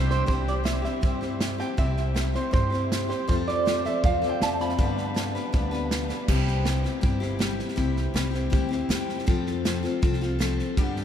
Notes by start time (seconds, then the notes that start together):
Already playing: C2 G3 C4 D4 G4 C5 E5
0.10 C5, snare
0.26 C2 C3 G3 C4 E4 G4 C5, kick, snare
0.47 D5, snare
0.64 G3 C4 E4 G4 E5, snare, hi-hat pedal
0.82 C4 E4 G4 E5, snare
1.01 G2 G3 C4 E4 G4, kick, snare
1.21 C4 E4 G4, snare
1.41 snare, hi-hat pedal
1.58 C4 E4 G4 G5, snare
1.77 C2 C3 G3 C4 E4 G4 E5, kick, snare
1.97 snare
2.14 G3 C4 E4 G4, snare, hi-hat pedal
2.34 C4 E4 G4 C5, snare
2.51 G2 G3 C4 E4 G4 C5, kick, snare
2.70 C4 E4 G4, snare
2.92 snare, hi-hat pedal
3.08 C4 E4 G4 C5, snare
3.28 F2 F3 C4 F4 A4 C5, kick, snare
3.48 D5, snare
3.65 F3 C4 F4 A4, snare, hi-hat pedal
3.85 C4 F4 A4 E5, snare
4.04 E2 F3 C4 F4 A4 F5, kick, snare
4.22 C4 F4 A4, snare
4.29 G5
4.40 F2 A5, snare, hi-hat pedal
4.59 C4 F4 A4 B5, snare
4.69 snare
4.78 G2 D3 G3 B3 D4 B4, kick, snare
4.98 snare
5.14 G3 B3 D4 B4, snare, hi-hat pedal
5.35 G3 B3 D4 B4, snare
5.52 D2 G3 B3 D4 B4, kick, snare
5.71 G3 B3 D4 B4, snare
5.91 snare, hi-hat pedal
6.09 G3 B3 D4 B4, snare
6.28 C2 C3 G3 C4 E4 G4, kick, snare, crash
6.48 snare
6.65 G3 C4 E4 G4, snare, hi-hat pedal
6.84 C4 E4 G4, snare
7.01 G1 G3 C4 E4 G4, kick, snare
7.20 C4 E4 G4, snare
7.39 G3 C4 E4 G4, snare, hi-hat pedal
7.59 snare
7.68 snare
7.76 C2 C3 G3 C4 E4 G4, kick, snare
7.97 snare
8.14 C2 G3 C4 E4 G4, snare, hi-hat pedal
8.31 C4 E4 G4, snare
8.50 D2 G3 C4 E4 G4, kick, snare
8.69 C4 E4 G4, snare
8.89 E2 G3 C4 E4 G4, snare, hi-hat pedal
9.09 snare
9.18 snare
9.26 F2 F3 C4 F4 A4, kick, snare
9.46 snare
9.65 F3 C4 F4 A4, snare, hi-hat pedal
9.83 C4 F4 A4, snare
10.02 C2 F3 C4 F4 A4, kick, snare
10.13 snare
10.21 C4 F4 A4, snare
10.39 F3 C4 F4 A4, snare, hi-hat pedal
10.59 snare
10.77 G2 D3 G3 B3 D4 G4, kick, snare
10.96 snare